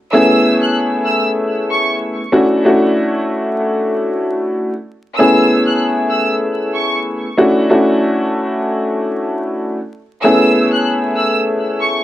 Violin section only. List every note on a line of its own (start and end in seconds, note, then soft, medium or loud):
0.12 0.59 E6 loud
0.63 0.73 F#6 medium
1.06 1.23 E6 medium
1.71 1.88 C#6 medium
5.16 5.64 E6 loud
5.67 5.78 F#6 medium
6.11 6.28 E6 medium
6.74 6.92 C#6 medium
10.22 10.70 E6 loud
10.73 10.84 F#6 medium
11.16 11.34 E6 medium
11.81 11.98 C#6 medium